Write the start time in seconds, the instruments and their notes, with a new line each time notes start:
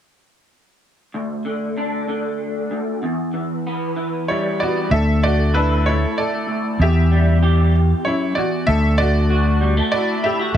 1.14 clean electric guitar D2
1.45 clean electric guitar D3
1.77 clean electric guitar D4
2.08 clean electric guitar D3
2.71 clean electric guitar D2
3.03 clean electric guitar E2
3.33 clean electric guitar E3
3.67 clean electric guitar B3
3.96 clean electric guitar E3
4.28 clean electric guitar G3, upright piano E4 C#5
4.60 clean electric guitar B3, upright piano F#4 D5
4.90 clean electric guitar D2, fingered electric bass D2, upright piano A4 E5
5.23 clean electric guitar A3, upright piano F#4 D5
5.54 upright piano D4 B4, clean electric guitar E4
5.86 clean electric guitar A3, upright piano E4 C#5
6.18 upright piano A4 D5
6.48 clean electric guitar D2
6.79 fingered electric bass E2, clean electric guitar E2, upright piano G4 E5
7.11 clean electric guitar G3
7.42 clean electric guitar G4
8.05 clean electric guitar F#2, upright piano E4 C#5
8.35 clean electric guitar E2, upright piano F#4 D5
8.66 clean electric guitar D2, fingered electric bass D2, upright piano A4 E5
8.98 clean electric guitar A3, upright piano F#4 D5
9.30 clean electric guitar F#4
9.61 clean electric guitar G3
9.77 clean electric guitar A3
9.92 clean electric guitar E4, upright piano F#4 D5
10.23 clean electric guitar E4, upright piano G4 E5
10.39 clean electric guitar F#4
10.54 fingered electric bass A1